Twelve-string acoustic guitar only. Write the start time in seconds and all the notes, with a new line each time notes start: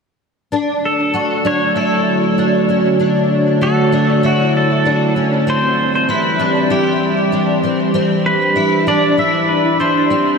0.52 D4
1.14 F#4
1.45 D4
1.76 E4
2.38 D4
2.69 C#4
2.99 D4
3.61 F#4
3.92 D4
4.23 E4
4.85 D4
5.16 C#4
5.47 C4
6.09 E4
6.39 D4
6.70 E4
7.32 D4
7.63 C4
7.94 C4
8.56 E4
8.87 D4
9.18 E4
9.80 D4
10.10 C4